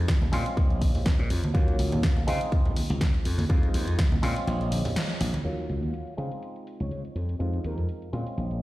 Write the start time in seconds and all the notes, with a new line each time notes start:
Already playing: G#3 C4 D#4 F4
0.08 kick, snare, closed hi-hat
0.21 closed hi-hat, tambourine, high conga, low conga
0.32 A#2 G#3 C4 C#4 F4, open hi-hat
0.46 closed hi-hat, tambourine
0.57 A#1, kick, closed hi-hat
0.70 closed hi-hat, tambourine
0.82 kick, open hi-hat, high conga
0.95 open hi-hat, tambourine, low conga
1.06 kick, snare, closed hi-hat
1.19 A#2, closed hi-hat, tambourine
1.30 F2, open hi-hat
1.43 closed hi-hat, tambourine, high conga
1.54 D#2 F#3 A#3 C#4 F4, kick, closed hi-hat, tambourine
1.68 closed hi-hat, tambourine
1.79 C#2, open hi-hat
1.92 D#2, closed hi-hat, tambourine, low conga
2.03 kick, snare, closed hi-hat, tambourine
2.16 closed hi-hat, tambourine, high conga, low conga
2.27 C#3 G#3 C4 D#4 F4, open hi-hat
2.41 closed hi-hat, tambourine
2.52 kick, closed hi-hat, tambourine
2.65 closed hi-hat, tambourine, low conga
2.76 open hi-hat, high conga
2.89 C#2, closed hi-hat, tambourine
3.01 C#3, kick, snare, closed hi-hat
3.14 closed hi-hat, tambourine
3.25 F2, open hi-hat
3.38 open hi-hat, tambourine, high conga
3.49 F2 G#3 C4 D#4 F4, kick, closed hi-hat, tambourine
3.63 closed hi-hat, tambourine
3.74 D#2, open hi-hat
3.87 F2, closed hi-hat, tambourine
3.99 kick, snare, closed hi-hat, tambourine
4.12 closed hi-hat, tambourine, high conga, low conga
4.22 A#2 G#3 C4 C#4 F4, open hi-hat
4.36 closed hi-hat, tambourine
4.47 A#1, closed hi-hat, tambourine
4.61 closed hi-hat, tambourine
4.72 open hi-hat, high conga
4.85 open hi-hat, tambourine, low conga
4.96 snare, closed hi-hat, tambourine
5.09 closed hi-hat, tambourine
5.21 A#1, open hi-hat
5.34 closed hi-hat, tambourine, high conga
5.44 D#2 F#3 A#3 C#4 F4, closed hi-hat
5.58 closed hi-hat
5.69 C#2, closed hi-hat
5.83 D#2, closed hi-hat
5.94 closed hi-hat
6.07 closed hi-hat
6.17 C#3 G#3 C4 D#4 F4, closed hi-hat
6.32 closed hi-hat
6.43 closed hi-hat
6.56 closed hi-hat
6.67 closed hi-hat
6.80 C#2 C#5, closed hi-hat
6.91 C#3, closed hi-hat
7.05 closed hi-hat
7.15 F2, closed hi-hat
7.29 closed hi-hat
7.39 F2 G#3 C4 D#4 F4, closed hi-hat
7.53 closed hi-hat
7.64 D#2 A#4, closed hi-hat
7.78 F2, closed hi-hat
7.89 closed hi-hat
8.02 closed hi-hat
8.12 A#2 G#3 C4 C#4 F4, closed hi-hat
8.27 closed hi-hat
8.37 A#1, closed hi-hat
8.51 closed hi-hat